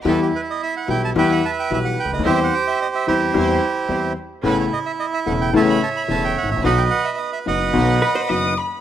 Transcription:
<<
  \new Staff \with { instrumentName = "Violin section" } { \time 4/4 \key e \minor \tempo 4 = 109 r1 | r1 | r1 | r2 r8 b''8 dis'''8 b''8 | }
  \new Staff \with { instrumentName = "Bandoneon" } { \time 4/4 \key e \minor << { a'16 g'16 b'16 dis''16 e''16 fis''16 g''16 a''16 g''16 fis''16 a''16 g''16 e''16 fis''16 g''16 dis''16 | e''16 fis''16 g''16 e''16 dis''16 e''16 c''2 r8 | b'16 cis''16 dis''16 e''16 dis''16 e''16 fis''16 g''16 a''16 b''16 a''16 b''16 a''16 g''16 fis''16 e''16 | fis''16 g''16 fis''16 e''16 dis''16 e''16 fis''2 r8 | } \\ { e'2 <b' e''>2 | <g' c''>4. <e' g'>2 r8 | e'2 <cis'' e''>2 | <b' dis''>4. <b' dis''>2 r8 | } >> }
  \new Staff \with { instrumentName = "Hollow-body jazz guitar" } { \time 4/4 \key e \minor r1 | r1 | r1 | r2 r8 b'16 c''16 dis''4 | }
  \new Staff \with { instrumentName = "String section" } { \time 4/4 \key e \minor <e' g' b'>8 r4 <e' g' b'>8 <e' g' b'>8 r8 <e' g' b'>8 r8 | <e' g' c''>8 r4 <e' g' c''>8 <e' g' c''>8 r8 <e' g' c''>8 r8 | <cis' a' b'>8 r4 <cis' a' b'>8 <cis' a' b'>8 r8 <cis' a' b'>8 r8 | <dis' fis' b'>8 r4 <dis' fis' b'>8 <dis' fis' b'>8 r8 <dis' fis' b'>8 r8 | }
  \new Staff \with { instrumentName = "Grand piano" } { \clef bass \time 4/4 \key e \minor <e, e g b g'>8 r4 <b,, b, e g b g'>8 <e, e g b g'>8 r8 <b,, b, e g b g'>8 r32 cis,32 d,32 dis,32 | <e, e g c' g'>8 r4 <e, e g c' g'>8 <e, e g c' g'>8 r8 <e, e g c' g'>8 r8 | <a,, a, cis a b e'>8 r4 <e,, e, cis a b e'>8 <a,, a, cis a b e'>8 r8 <e,, e, cis a b e'>8 r32 gis,,32 a,,32 ais,,32 | <b,, b, dis fis b fis'>8 r4 <fis,, fis, dis fis b fis'>8 <b,, b, dis fis b fis'>8 r8 <fis,, fis, dis fis b fis'>8 r8 | }
  \new Staff \with { instrumentName = "Upright bass" } { \clef bass \time 4/4 \key e \minor e,16. r4 r32 b,,16. r32 e,16. r8 r32 b,,16. r16 cis,32 d,32 dis,32 | e,16. r4 r32 e,16. r32 e,16. r8 r32 e,16. r8 r32 | a,,16. r4 r32 e,,16. r32 a,,16. r8 r32 e,,16. r16 gis,,32 a,,32 ais,,32 | b,,16. r4 r32 fis,,16. r32 b,,16. r8 r32 fis,,16. r8 r32 | }
>>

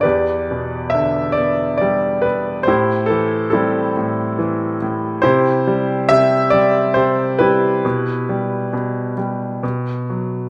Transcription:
<<
  \new Staff \with { instrumentName = "Grand piano" } { \time 3/4 \key e \minor \tempo 4 = 69 << { d''4 e''8 d''8 d''8 b'8 | c''8 a'8 a'4. r8 | c''4 e''8 d''8 c''8 b'8~ | b'4. r4. | } \\ { <g' b'>4. r4. | <e' g'>4 <c' e'>4. r8 | <e' g'>4. r4 <e' g'>8~ | <e' g'>4. r4. | } >> }
  \new Staff \with { instrumentName = "Grand piano" } { \clef bass \time 3/4 \key e \minor e,8 b,8 d8 b8 g8 b8 | a,8 e8 g8 a,8 e8 a,8 | c8 g8 c8 g8 c8 g8 | b,8 g8 b,8 g8 b,8 fis8 | }
>>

